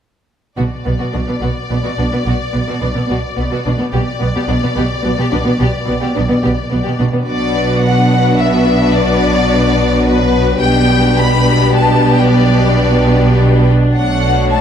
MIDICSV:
0, 0, Header, 1, 7, 480
1, 0, Start_track
1, 0, Key_signature, 2, "minor"
1, 0, Tempo, 557103
1, 502, Time_signature, 3, 2, 24, 8
1, 12587, End_track
2, 0, Start_track
2, 0, Title_t, "Violin section"
2, 0, Program_c, 0, 48
2, 505, Note_on_c, 0, 74, 33
2, 3352, Note_off_c, 0, 74, 0
2, 3389, Note_on_c, 0, 74, 43
2, 6061, Note_off_c, 0, 74, 0
2, 6269, Note_on_c, 0, 74, 52
2, 6714, Note_off_c, 0, 74, 0
2, 6749, Note_on_c, 0, 78, 56
2, 7228, Note_off_c, 0, 78, 0
2, 7236, Note_on_c, 0, 76, 53
2, 7709, Note_on_c, 0, 74, 69
2, 7711, Note_off_c, 0, 76, 0
2, 8665, Note_on_c, 0, 71, 66
2, 8668, Note_off_c, 0, 74, 0
2, 9136, Note_off_c, 0, 71, 0
2, 9136, Note_on_c, 0, 79, 70
2, 9611, Note_off_c, 0, 79, 0
2, 9627, Note_on_c, 0, 83, 69
2, 10107, Note_off_c, 0, 83, 0
2, 10114, Note_on_c, 0, 81, 59
2, 10463, Note_off_c, 0, 81, 0
2, 10482, Note_on_c, 0, 79, 48
2, 10588, Note_on_c, 0, 74, 51
2, 10594, Note_off_c, 0, 79, 0
2, 11527, Note_off_c, 0, 74, 0
2, 12030, Note_on_c, 0, 78, 53
2, 12474, Note_off_c, 0, 78, 0
2, 12515, Note_on_c, 0, 81, 55
2, 12587, Note_off_c, 0, 81, 0
2, 12587, End_track
3, 0, Start_track
3, 0, Title_t, "Violin section"
3, 0, Program_c, 1, 48
3, 489, Note_on_c, 1, 66, 31
3, 540, Note_off_c, 1, 66, 0
3, 733, Note_on_c, 1, 59, 21
3, 783, Note_off_c, 1, 59, 0
3, 850, Note_on_c, 1, 66, 34
3, 900, Note_off_c, 1, 66, 0
3, 970, Note_on_c, 1, 62, 25
3, 1021, Note_off_c, 1, 62, 0
3, 1112, Note_on_c, 1, 59, 26
3, 1158, Note_off_c, 1, 59, 0
3, 1217, Note_on_c, 1, 66, 33
3, 1266, Note_off_c, 1, 66, 0
3, 1462, Note_on_c, 1, 59, 28
3, 1511, Note_off_c, 1, 59, 0
3, 1593, Note_on_c, 1, 66, 32
3, 1639, Note_off_c, 1, 66, 0
3, 1711, Note_on_c, 1, 62, 30
3, 1758, Note_off_c, 1, 62, 0
3, 1826, Note_on_c, 1, 59, 31
3, 1874, Note_off_c, 1, 59, 0
3, 1954, Note_on_c, 1, 66, 35
3, 2000, Note_off_c, 1, 66, 0
3, 2185, Note_on_c, 1, 59, 27
3, 2233, Note_off_c, 1, 59, 0
3, 2312, Note_on_c, 1, 66, 37
3, 2358, Note_off_c, 1, 66, 0
3, 2425, Note_on_c, 1, 62, 28
3, 2473, Note_off_c, 1, 62, 0
3, 2548, Note_on_c, 1, 59, 30
3, 2595, Note_off_c, 1, 59, 0
3, 2666, Note_on_c, 1, 66, 42
3, 2713, Note_off_c, 1, 66, 0
3, 2903, Note_on_c, 1, 59, 30
3, 2951, Note_off_c, 1, 59, 0
3, 3025, Note_on_c, 1, 66, 46
3, 3073, Note_off_c, 1, 66, 0
3, 3147, Note_on_c, 1, 62, 34
3, 3195, Note_off_c, 1, 62, 0
3, 3268, Note_on_c, 1, 59, 39
3, 3316, Note_off_c, 1, 59, 0
3, 3386, Note_on_c, 1, 67, 42
3, 3434, Note_off_c, 1, 67, 0
3, 3616, Note_on_c, 1, 59, 29
3, 3665, Note_off_c, 1, 59, 0
3, 3754, Note_on_c, 1, 67, 45
3, 3800, Note_off_c, 1, 67, 0
3, 3867, Note_on_c, 1, 62, 34
3, 3915, Note_off_c, 1, 62, 0
3, 3987, Note_on_c, 1, 59, 32
3, 4035, Note_off_c, 1, 59, 0
3, 4107, Note_on_c, 1, 67, 49
3, 4155, Note_off_c, 1, 67, 0
3, 4354, Note_on_c, 1, 59, 36
3, 4400, Note_off_c, 1, 59, 0
3, 4477, Note_on_c, 1, 67, 53
3, 4523, Note_off_c, 1, 67, 0
3, 4578, Note_on_c, 1, 62, 39
3, 4628, Note_off_c, 1, 62, 0
3, 4706, Note_on_c, 1, 59, 41
3, 4754, Note_off_c, 1, 59, 0
3, 4830, Note_on_c, 1, 67, 49
3, 4877, Note_off_c, 1, 67, 0
3, 5078, Note_on_c, 1, 59, 38
3, 5123, Note_off_c, 1, 59, 0
3, 5183, Note_on_c, 1, 67, 49
3, 5231, Note_off_c, 1, 67, 0
3, 5300, Note_on_c, 1, 62, 38
3, 5349, Note_off_c, 1, 62, 0
3, 5424, Note_on_c, 1, 59, 36
3, 5473, Note_off_c, 1, 59, 0
3, 5535, Note_on_c, 1, 67, 49
3, 5585, Note_off_c, 1, 67, 0
3, 5770, Note_on_c, 1, 59, 33
3, 5821, Note_off_c, 1, 59, 0
3, 5889, Note_on_c, 1, 67, 46
3, 5941, Note_off_c, 1, 67, 0
3, 6020, Note_on_c, 1, 62, 33
3, 6069, Note_off_c, 1, 62, 0
3, 6138, Note_on_c, 1, 59, 34
3, 6188, Note_off_c, 1, 59, 0
3, 6244, Note_on_c, 1, 66, 35
3, 6245, Note_on_c, 1, 71, 36
3, 9101, Note_off_c, 1, 66, 0
3, 9102, Note_off_c, 1, 71, 0
3, 9125, Note_on_c, 1, 71, 47
3, 9129, Note_on_c, 1, 67, 48
3, 11808, Note_off_c, 1, 71, 0
3, 11810, Note_off_c, 1, 67, 0
3, 12015, Note_on_c, 1, 66, 37
3, 12018, Note_on_c, 1, 73, 35
3, 12587, Note_off_c, 1, 66, 0
3, 12587, Note_off_c, 1, 73, 0
3, 12587, End_track
4, 0, Start_track
4, 0, Title_t, "French horn section"
4, 0, Program_c, 2, 60
4, 6254, Note_on_c, 2, 62, 35
4, 6262, Note_on_c, 2, 54, 34
4, 9106, Note_off_c, 2, 62, 0
4, 9110, Note_off_c, 2, 54, 0
4, 9132, Note_on_c, 2, 55, 49
4, 9138, Note_on_c, 2, 62, 49
4, 11744, Note_off_c, 2, 55, 0
4, 11747, Note_off_c, 2, 62, 0
4, 12034, Note_on_c, 2, 57, 36
4, 12036, Note_on_c, 2, 73, 36
4, 12587, Note_off_c, 2, 57, 0
4, 12587, Note_off_c, 2, 73, 0
4, 12587, End_track
5, 0, Start_track
5, 0, Title_t, "Viola section"
5, 0, Program_c, 3, 48
5, 496, Note_on_c, 3, 59, 33
5, 545, Note_off_c, 3, 59, 0
5, 737, Note_on_c, 3, 59, 26
5, 786, Note_off_c, 3, 59, 0
5, 852, Note_on_c, 3, 59, 34
5, 902, Note_off_c, 3, 59, 0
5, 972, Note_on_c, 3, 59, 25
5, 1022, Note_off_c, 3, 59, 0
5, 1094, Note_on_c, 3, 59, 25
5, 1144, Note_off_c, 3, 59, 0
5, 1223, Note_on_c, 3, 59, 31
5, 1271, Note_off_c, 3, 59, 0
5, 1466, Note_on_c, 3, 59, 28
5, 1513, Note_off_c, 3, 59, 0
5, 1571, Note_on_c, 3, 59, 33
5, 1622, Note_off_c, 3, 59, 0
5, 1705, Note_on_c, 3, 59, 26
5, 1753, Note_off_c, 3, 59, 0
5, 1821, Note_on_c, 3, 59, 29
5, 1869, Note_off_c, 3, 59, 0
5, 1933, Note_on_c, 3, 59, 38
5, 1983, Note_off_c, 3, 59, 0
5, 2177, Note_on_c, 3, 59, 26
5, 2227, Note_off_c, 3, 59, 0
5, 2303, Note_on_c, 3, 59, 40
5, 2352, Note_off_c, 3, 59, 0
5, 2421, Note_on_c, 3, 59, 27
5, 2470, Note_off_c, 3, 59, 0
5, 2541, Note_on_c, 3, 59, 27
5, 2590, Note_off_c, 3, 59, 0
5, 2642, Note_on_c, 3, 59, 35
5, 2694, Note_off_c, 3, 59, 0
5, 2897, Note_on_c, 3, 59, 31
5, 2947, Note_off_c, 3, 59, 0
5, 3028, Note_on_c, 3, 59, 42
5, 3075, Note_off_c, 3, 59, 0
5, 3150, Note_on_c, 3, 59, 32
5, 3197, Note_off_c, 3, 59, 0
5, 3254, Note_on_c, 3, 59, 37
5, 3304, Note_off_c, 3, 59, 0
5, 3384, Note_on_c, 3, 59, 39
5, 3432, Note_off_c, 3, 59, 0
5, 3632, Note_on_c, 3, 59, 32
5, 3678, Note_off_c, 3, 59, 0
5, 3749, Note_on_c, 3, 59, 48
5, 3796, Note_off_c, 3, 59, 0
5, 3856, Note_on_c, 3, 59, 38
5, 3905, Note_off_c, 3, 59, 0
5, 3984, Note_on_c, 3, 59, 36
5, 4032, Note_off_c, 3, 59, 0
5, 4095, Note_on_c, 3, 59, 54
5, 4145, Note_off_c, 3, 59, 0
5, 4326, Note_on_c, 3, 59, 36
5, 4378, Note_off_c, 3, 59, 0
5, 4460, Note_on_c, 3, 59, 49
5, 4509, Note_off_c, 3, 59, 0
5, 4593, Note_on_c, 3, 59, 41
5, 4639, Note_off_c, 3, 59, 0
5, 4690, Note_on_c, 3, 59, 41
5, 4742, Note_off_c, 3, 59, 0
5, 4820, Note_on_c, 3, 59, 49
5, 4869, Note_off_c, 3, 59, 0
5, 5059, Note_on_c, 3, 59, 34
5, 5109, Note_off_c, 3, 59, 0
5, 5184, Note_on_c, 3, 59, 47
5, 5232, Note_off_c, 3, 59, 0
5, 5306, Note_on_c, 3, 59, 38
5, 5354, Note_off_c, 3, 59, 0
5, 5422, Note_on_c, 3, 59, 37
5, 5471, Note_off_c, 3, 59, 0
5, 5546, Note_on_c, 3, 59, 47
5, 5594, Note_off_c, 3, 59, 0
5, 5790, Note_on_c, 3, 59, 33
5, 5837, Note_off_c, 3, 59, 0
5, 5903, Note_on_c, 3, 59, 47
5, 5952, Note_off_c, 3, 59, 0
5, 6028, Note_on_c, 3, 59, 34
5, 6076, Note_off_c, 3, 59, 0
5, 6143, Note_on_c, 3, 59, 37
5, 6191, Note_off_c, 3, 59, 0
5, 6269, Note_on_c, 3, 62, 38
5, 6273, Note_on_c, 3, 59, 34
5, 9113, Note_off_c, 3, 62, 0
5, 9115, Note_off_c, 3, 59, 0
5, 9151, Note_on_c, 3, 59, 48
5, 9155, Note_on_c, 3, 62, 50
5, 11821, Note_off_c, 3, 59, 0
5, 12025, Note_on_c, 3, 57, 39
5, 12587, Note_off_c, 3, 57, 0
5, 12587, Note_off_c, 3, 62, 0
5, 12587, End_track
6, 0, Start_track
6, 0, Title_t, "Cello section"
6, 0, Program_c, 4, 48
6, 493, Note_on_c, 4, 47, 36
6, 543, Note_off_c, 4, 47, 0
6, 737, Note_on_c, 4, 47, 23
6, 786, Note_off_c, 4, 47, 0
6, 859, Note_on_c, 4, 47, 34
6, 908, Note_off_c, 4, 47, 0
6, 980, Note_on_c, 4, 47, 25
6, 1028, Note_off_c, 4, 47, 0
6, 1103, Note_on_c, 4, 47, 26
6, 1151, Note_off_c, 4, 47, 0
6, 1217, Note_on_c, 4, 47, 39
6, 1266, Note_off_c, 4, 47, 0
6, 1467, Note_on_c, 4, 47, 25
6, 1514, Note_off_c, 4, 47, 0
6, 1594, Note_on_c, 4, 47, 38
6, 1640, Note_off_c, 4, 47, 0
6, 1709, Note_on_c, 4, 47, 27
6, 1756, Note_off_c, 4, 47, 0
6, 1828, Note_on_c, 4, 47, 27
6, 1875, Note_off_c, 4, 47, 0
6, 1948, Note_on_c, 4, 47, 38
6, 1995, Note_off_c, 4, 47, 0
6, 2186, Note_on_c, 4, 47, 27
6, 2234, Note_off_c, 4, 47, 0
6, 2315, Note_on_c, 4, 47, 40
6, 2361, Note_off_c, 4, 47, 0
6, 2428, Note_on_c, 4, 47, 29
6, 2475, Note_off_c, 4, 47, 0
6, 2548, Note_on_c, 4, 47, 32
6, 2595, Note_off_c, 4, 47, 0
6, 2670, Note_on_c, 4, 47, 41
6, 2717, Note_off_c, 4, 47, 0
6, 2918, Note_on_c, 4, 47, 30
6, 2963, Note_off_c, 4, 47, 0
6, 3028, Note_on_c, 4, 47, 47
6, 3075, Note_off_c, 4, 47, 0
6, 3155, Note_on_c, 4, 47, 30
6, 3201, Note_off_c, 4, 47, 0
6, 3271, Note_on_c, 4, 47, 33
6, 3318, Note_off_c, 4, 47, 0
6, 3388, Note_on_c, 4, 47, 48
6, 3436, Note_off_c, 4, 47, 0
6, 3630, Note_on_c, 4, 47, 33
6, 3677, Note_off_c, 4, 47, 0
6, 3754, Note_on_c, 4, 47, 51
6, 3800, Note_off_c, 4, 47, 0
6, 3871, Note_on_c, 4, 47, 36
6, 3918, Note_off_c, 4, 47, 0
6, 3993, Note_on_c, 4, 47, 37
6, 4040, Note_off_c, 4, 47, 0
6, 4107, Note_on_c, 4, 47, 49
6, 4155, Note_off_c, 4, 47, 0
6, 4346, Note_on_c, 4, 47, 36
6, 4394, Note_off_c, 4, 47, 0
6, 4464, Note_on_c, 4, 47, 57
6, 4513, Note_off_c, 4, 47, 0
6, 4580, Note_on_c, 4, 47, 38
6, 4629, Note_off_c, 4, 47, 0
6, 4699, Note_on_c, 4, 47, 40
6, 4748, Note_off_c, 4, 47, 0
6, 4819, Note_on_c, 4, 47, 58
6, 4869, Note_off_c, 4, 47, 0
6, 5052, Note_on_c, 4, 47, 36
6, 5103, Note_off_c, 4, 47, 0
6, 5179, Note_on_c, 4, 47, 51
6, 5229, Note_off_c, 4, 47, 0
6, 5313, Note_on_c, 4, 47, 40
6, 5359, Note_off_c, 4, 47, 0
6, 5429, Note_on_c, 4, 47, 39
6, 5477, Note_off_c, 4, 47, 0
6, 5548, Note_on_c, 4, 47, 51
6, 5596, Note_off_c, 4, 47, 0
6, 5784, Note_on_c, 4, 47, 32
6, 5832, Note_off_c, 4, 47, 0
6, 5910, Note_on_c, 4, 47, 45
6, 5957, Note_off_c, 4, 47, 0
6, 6037, Note_on_c, 4, 47, 31
6, 6083, Note_off_c, 4, 47, 0
6, 6144, Note_on_c, 4, 47, 29
6, 6192, Note_off_c, 4, 47, 0
6, 6262, Note_on_c, 4, 47, 43
6, 9110, Note_off_c, 4, 47, 0
6, 9145, Note_on_c, 4, 47, 54
6, 11818, Note_off_c, 4, 47, 0
6, 12026, Note_on_c, 4, 47, 44
6, 12587, Note_off_c, 4, 47, 0
6, 12587, End_track
7, 0, Start_track
7, 0, Title_t, "Double bass section"
7, 0, Program_c, 5, 48
7, 503, Note_on_c, 5, 35, 32
7, 551, Note_off_c, 5, 35, 0
7, 745, Note_on_c, 5, 35, 23
7, 792, Note_off_c, 5, 35, 0
7, 992, Note_on_c, 5, 35, 25
7, 1038, Note_off_c, 5, 35, 0
7, 1230, Note_on_c, 5, 35, 35
7, 1277, Note_off_c, 5, 35, 0
7, 1474, Note_on_c, 5, 35, 26
7, 1520, Note_off_c, 5, 35, 0
7, 1710, Note_on_c, 5, 35, 27
7, 1757, Note_off_c, 5, 35, 0
7, 1944, Note_on_c, 5, 35, 33
7, 1992, Note_off_c, 5, 35, 0
7, 2190, Note_on_c, 5, 35, 25
7, 2237, Note_off_c, 5, 35, 0
7, 2428, Note_on_c, 5, 35, 28
7, 2475, Note_off_c, 5, 35, 0
7, 2676, Note_on_c, 5, 35, 42
7, 2722, Note_off_c, 5, 35, 0
7, 2911, Note_on_c, 5, 35, 28
7, 2958, Note_off_c, 5, 35, 0
7, 3154, Note_on_c, 5, 35, 31
7, 3200, Note_off_c, 5, 35, 0
7, 3391, Note_on_c, 5, 35, 42
7, 3438, Note_off_c, 5, 35, 0
7, 3634, Note_on_c, 5, 35, 32
7, 3680, Note_off_c, 5, 35, 0
7, 3867, Note_on_c, 5, 35, 36
7, 3915, Note_off_c, 5, 35, 0
7, 4115, Note_on_c, 5, 35, 51
7, 4161, Note_off_c, 5, 35, 0
7, 4354, Note_on_c, 5, 35, 37
7, 4400, Note_off_c, 5, 35, 0
7, 4596, Note_on_c, 5, 35, 38
7, 4642, Note_off_c, 5, 35, 0
7, 4834, Note_on_c, 5, 35, 51
7, 4880, Note_off_c, 5, 35, 0
7, 5080, Note_on_c, 5, 35, 35
7, 5125, Note_off_c, 5, 35, 0
7, 5322, Note_on_c, 5, 35, 38
7, 5367, Note_off_c, 5, 35, 0
7, 5562, Note_on_c, 5, 35, 49
7, 5607, Note_off_c, 5, 35, 0
7, 5807, Note_on_c, 5, 35, 32
7, 5851, Note_off_c, 5, 35, 0
7, 6036, Note_on_c, 5, 35, 31
7, 6082, Note_off_c, 5, 35, 0
7, 6271, Note_on_c, 5, 35, 36
7, 9115, Note_off_c, 5, 35, 0
7, 9155, Note_on_c, 5, 35, 49
7, 11823, Note_off_c, 5, 35, 0
7, 12038, Note_on_c, 5, 35, 39
7, 12587, Note_off_c, 5, 35, 0
7, 12587, End_track
0, 0, End_of_file